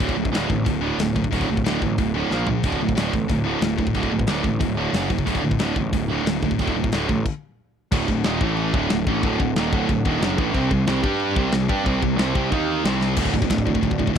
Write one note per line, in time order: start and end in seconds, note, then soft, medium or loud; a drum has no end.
0.00 0.12 D1 medium
0.00 0.15 D2 medium
0.00 0.15 A2 medium
0.00 0.15 D3 loud
0.00 kick medium
0.00 open hi-hat medium
0.09 kick medium
0.16 0.29 D1 medium
0.16 0.31 D2 medium
0.16 0.31 A2 medium
0.25 kick medium
0.33 0.45 D1 medium
0.33 0.47 D2 medium
0.33 0.47 A2 medium
0.33 0.49 D3 loud
0.33 snare loud
0.33 open hi-hat medium
0.48 0.62 A1 loud
0.48 0.64 D2 medium
0.48 0.64 A2 medium
0.48 kick medium
0.65 0.91 D1 medium
0.65 0.80 D2 medium
0.65 0.80 A2 medium
0.65 kick loud
0.65 open hi-hat medium
0.81 0.97 D2 medium
0.81 0.97 A2 medium
0.81 0.97 D3 loud
0.98 1.23 D1 medium
0.98 1.14 D2 medium
0.98 1.14 A2 loud
0.98 snare loud
0.98 open hi-hat medium
1.15 1.30 D2 medium
1.15 1.30 A2 medium
1.15 kick medium
1.24 kick medium
1.31 1.44 D1 medium
1.31 1.47 D2 medium
1.31 1.47 A2 loud
1.31 1.47 D3 loud
1.31 kick medium
1.31 open hi-hat medium
1.41 kick medium
1.49 1.61 D1 medium
1.49 1.63 D2 medium
1.49 1.63 A2 medium
1.57 kick medium
1.64 1.77 D1 medium
1.64 1.80 D2 medium
1.64 1.80 A2 medium
1.64 1.81 D3 medium
1.64 snare loud
1.64 open hi-hat medium
1.81 1.94 A1 medium
1.81 1.96 D2 medium
1.81 1.97 A2 medium
1.81 kick medium
1.98 2.22 D1 medium
1.98 2.13 D2 medium
1.98 2.13 A2 medium
1.98 kick loud
1.98 open hi-hat medium
2.14 2.30 D2 loud
2.14 2.30 A2 medium
2.14 2.30 D3 medium
2.30 2.55 A#1 medium
2.30 2.46 A#2 medium
2.30 2.46 F3 medium
2.30 2.47 A#3 loud
2.30 snare medium
2.47 2.62 A#2 medium
2.47 2.62 F3 medium
2.47 floor tom loud
2.63 2.76 D1 medium
2.63 2.79 D2 medium
2.63 2.80 A2 loud
2.63 2.80 D3 loud
2.63 kick loud
2.63 open hi-hat medium
2.63 splash medium
2.72 kick medium
2.80 2.92 D1 medium
2.80 2.94 D2 medium
2.80 2.95 A2 medium
2.89 kick medium
2.95 3.09 D1 medium
2.95 3.10 D2 medium
2.95 3.11 A2 medium
2.95 3.12 D3 medium
2.95 snare loud
2.95 open hi-hat medium
3.12 3.25 A1 medium
3.12 3.27 D2 medium
3.12 3.27 A2 medium
3.12 kick medium
3.28 3.54 D1 medium
3.28 3.43 D2 medium
3.28 3.43 A2 medium
3.28 kick loud
3.28 open hi-hat medium
3.44 3.60 D2 medium
3.44 3.60 A2 loud
3.44 3.61 D3 loud
3.61 3.87 D1 medium
3.61 3.76 D2 medium
3.61 3.77 A2 medium
3.61 snare loud
3.61 open hi-hat medium
3.77 3.93 D2 medium
3.77 3.94 A2 medium
3.77 kick medium
3.87 kick medium
3.94 4.08 D1 medium
3.94 4.10 D2 medium
3.94 4.10 A2 loud
3.94 4.11 D3 medium
3.94 kick medium
3.94 open hi-hat medium
4.03 kick medium
4.11 4.24 D1 medium
4.11 4.26 D2 medium
4.11 4.27 A2 medium
4.19 kick medium
4.27 4.40 D1 medium
4.27 4.44 D2 medium
4.27 4.43 A2 loud
4.27 4.44 D3 loud
4.27 snare loud
4.27 open hi-hat medium
4.44 4.57 A1 loud
4.44 4.59 D2 medium
4.44 4.60 A2 medium
4.44 kick medium
4.60 4.85 D1 loud
4.60 4.76 D2 medium
4.60 4.76 A2 medium
4.60 kick loud
4.60 open hi-hat medium
4.77 4.93 D2 medium
4.77 4.93 A2 loud
4.77 4.94 D3 loud
4.93 5.18 F#1 medium
4.93 5.09 F#2 loud
4.93 5.10 C#3 loud
4.93 5.10 F#3 medium
4.93 snare loud
4.93 open hi-hat medium
5.10 5.26 F#2 medium
5.10 5.26 C#3 medium
5.10 kick medium
5.19 kick medium
5.26 5.39 D1 medium
5.26 5.42 D2 medium
5.26 5.41 A2 loud
5.26 5.43 D3 loud
5.26 kick loud
5.26 open hi-hat medium
5.35 kick medium
5.42 5.55 D1 medium
5.42 5.58 D2 medium
5.42 5.58 A2 medium
5.51 kick medium
5.58 5.71 D1 loud
5.58 5.75 D2 medium
5.58 5.76 A2 medium
5.58 5.76 D3 loud
5.58 snare loud
5.58 open hi-hat medium
5.76 5.89 A1 medium
5.76 5.92 D2 medium
5.76 5.92 A2 medium
5.76 kick loud
5.92 6.18 D1 medium
5.92 6.08 D2 medium
5.92 6.09 A2 medium
5.92 kick loud
5.92 open hi-hat medium
6.11 6.26 D2 medium
6.11 6.26 A2 loud
6.11 6.27 D3 loud
6.25 6.50 D1 loud
6.25 6.42 D2 medium
6.25 6.42 A2 medium
6.25 snare loud
6.25 open hi-hat medium
6.43 6.59 D2 medium
6.43 6.59 A2 medium
6.43 kick medium
6.51 kick medium
6.59 6.72 D1 medium
6.59 6.76 D2 loud
6.59 6.76 A2 medium
6.59 6.76 D3 loud
6.59 kick loud
6.59 open hi-hat medium
6.68 kick medium
6.74 6.87 D1 medium
6.74 6.91 D2 medium
6.74 6.92 A2 medium
6.84 kick medium
6.92 7.05 D1 medium
6.92 7.09 D2 medium
6.92 7.09 A2 loud
6.92 7.09 D3 loud
6.92 snare loud
6.92 open hi-hat medium
7.09 7.21 A1 medium
7.09 7.25 D2 medium
7.09 7.25 A2 medium
7.09 kick medium
7.25 kick loud
7.25 crash medium
7.92 8.07 D1 medium
7.92 8.08 D2 loud
7.92 8.08 A2 loud
7.92 8.08 D3 loud
7.92 8.41 D4 medium
7.92 10.52 A4 medium
7.92 8.41 F#5 medium
7.92 kick loud
7.92 crash loud
7.92 china medium
8.08 8.23 D1 medium
8.08 8.22 D2 medium
8.08 8.22 A2 medium
8.08 kick medium
8.24 8.39 D#1 loud
8.24 8.41 D#2 medium
8.24 8.42 A#2 loud
8.24 8.42 D#3 medium
8.24 snare loud
8.24 china medium
8.40 8.71 A1 loud
8.40 8.73 A2 medium
8.40 8.74 E3 loud
8.40 8.74 A3 medium
8.40 8.73 E4 medium
8.40 8.73 A5 medium
8.40 kick loud
8.57 china medium
8.73 8.89 D1 medium
8.73 8.90 D2 medium
8.73 8.90 A2 loud
8.73 8.90 D3 loud
8.73 10.53 D4 medium
8.73 10.53 F#5 medium
8.73 kick loud
8.90 9.05 D1 medium
8.90 9.04 D2 medium
8.90 9.04 A2 medium
8.90 snare loud
8.90 china medium
9.06 9.22 A1 loud
9.06 9.23 A2 loud
9.06 9.23 E3 loud
9.06 9.23 A3 loud
9.06 kick loud
9.23 9.38 D1 loud
9.23 9.40 D2 medium
9.23 9.40 A2 loud
9.23 9.40 D3 loud
9.23 kick loud
9.23 china medium
9.40 9.55 D1 medium
9.40 9.54 D2 medium
9.40 9.54 A2 medium
9.40 kick medium
9.55 9.71 D#1 loud
9.55 9.73 D#2 loud
9.55 9.73 A#2 loud
9.55 9.73 D#3 loud
9.55 snare loud
9.55 china medium
9.72 9.88 D1 medium
9.72 9.88 D2 medium
9.72 9.88 A2 medium
9.72 9.89 D3 loud
9.72 kick loud
9.89 10.04 D1 medium
9.89 10.02 D2 medium
9.89 10.02 A2 medium
9.89 kick loud
9.89 china medium
10.05 10.20 D#1 medium
10.05 10.21 D#2 medium
10.05 10.22 A#2 loud
10.05 10.22 D#3 loud
10.05 kick loud
10.21 10.37 F#1 loud
10.21 10.37 F#2 medium
10.21 10.38 C#3 loud
10.21 10.38 F#3 loud
10.21 snare loud
10.21 china medium
10.38 10.53 A1 medium
10.38 10.54 A2 medium
10.38 10.54 E3 loud
10.38 10.55 A3 loud
10.38 kick loud
10.51 10.70 C2 medium
10.51 10.70 C3 loud
10.51 11.02 C4 medium
10.51 12.48 G4 medium
10.51 12.48 G5 medium
10.51 kick loud
10.51 china medium
10.56 10.71 G3 loud
10.56 10.71 C4 loud
10.71 10.86 C2 medium
10.71 10.84 C3 medium
10.71 10.84 G3 medium
10.71 kick loud
10.87 11.02 C2 loud
10.87 11.03 C3 medium
10.87 11.03 G3 loud
10.87 11.04 C4 loud
10.87 snare loud
10.87 china medium
11.01 11.34 G2 loud
11.01 11.36 G3 medium
11.01 11.35 D4 medium
11.01 kick loud
11.06 11.37 D4 medium
11.06 11.37 G4 loud
11.20 china medium
11.36 11.51 C2 medium
11.36 11.52 C3 medium
11.36 11.53 G3 loud
11.36 12.50 C4 medium
11.36 11.53 C4 loud
11.36 kick loud
11.52 11.68 C2 medium
11.52 11.66 C3 medium
11.52 11.67 G3 medium
11.52 snare loud
11.52 china medium
11.69 11.84 G2 medium
11.69 11.85 G3 loud
11.69 11.85 D4 loud
11.69 11.85 G4 loud
11.69 kick loud
11.85 12.01 C2 medium
11.85 12.01 C3 loud
11.85 12.02 G3 loud
11.85 12.02 C4 loud
11.85 kick loud
11.85 china medium
12.02 12.17 C2 medium
12.02 12.16 C3 medium
12.02 12.16 G3 medium
12.02 kick medium
12.18 12.34 C2 loud
12.18 12.34 C3 medium
12.18 12.35 G3 loud
12.18 12.35 C4 loud
12.18 snare loud
12.18 china medium
12.35 12.50 C2 loud
12.35 12.51 C3 medium
12.35 12.51 G3 loud
12.35 12.51 C4 loud
12.35 kick loud
12.51 12.82 D#2 loud
12.51 12.84 D#3 medium
12.51 12.84 A#3 loud
12.51 12.84 D#4 medium
12.51 12.85 D#4 loud
12.51 12.85 A#4 medium
12.51 12.85 A#5 medium
12.51 kick loud
12.51 china medium
12.85 13.18 C2 medium
12.85 13.17 C3 medium
12.85 13.17 G3 loud
12.85 13.17 C4 medium
12.85 13.17 C4 loud
12.85 13.17 G4 medium
12.85 13.17 G5 medium
12.85 snare loud
12.85 china medium
13.01 snare medium
13.16 13.28 D1 medium
13.16 13.33 D2 medium
13.16 13.32 A2 medium
13.16 13.33 D3 loud
13.16 14.18 A3 medium
13.16 14.18 F#4 medium
13.16 14.18 D5 medium
13.16 kick medium
13.16 crash loud
13.16 crash medium
13.25 kick medium
13.33 13.45 D1 medium
13.33 13.41 D2 medium
13.33 13.41 A2 medium
13.33 kick medium
13.42 13.49 D2 medium
13.42 13.49 A2 medium
13.42 kick medium
13.50 13.72 D1 medium
13.50 13.64 D2 medium
13.50 13.64 A2 medium
13.50 kick medium
13.50 snare loud
13.50 crash medium
13.58 kick medium
13.65 13.73 D2 medium
13.65 13.73 A2 medium
13.65 kick medium
13.74 13.80 D2 medium
13.74 13.80 A2 medium
13.74 kick loud
13.81 14.05 D1 medium
13.81 13.97 D2 medium
13.81 13.96 A2 loud
13.81 kick medium
13.81 crash medium
13.91 kick medium
13.98 14.05 D2 medium
13.98 14.05 A2 medium
13.98 kick medium
14.06 14.12 D2 medium
14.06 14.12 A2 medium
14.06 kick medium
14.13 14.18 D1 medium
14.13 14.18 D2 medium
14.13 14.18 A2 medium